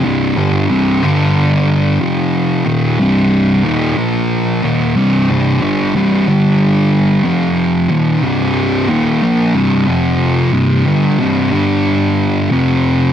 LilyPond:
\new Staff \with { instrumentName = "Distorted electric guitar" } { \clef bass \time 4/4 \key c \minor \tempo 4 = 92 <c, g, c>8 <g, d g>8 <c, g, c>8 <g, d g>4. <f, c f>4 | <ees, bes, ees>8 <c, g, c>4 <ees, bes, ees>8 <bes, f bes>4 <ees, bes, ees>8 <c, g, c>8 | <c, g, c>8 <g, d g>8 <c, g, c>8 <g, d g>4. <f, c f>4 | <ees, bes, ees>8 <c, g, c>4 <ees, bes, ees>8 <bes, f bes>8 <c, g, c>8 <f, c f>4 |
<c, g, c>8 <g, d g>8 <c, g, c>8 <g, d g>4. <f, c f>4 | }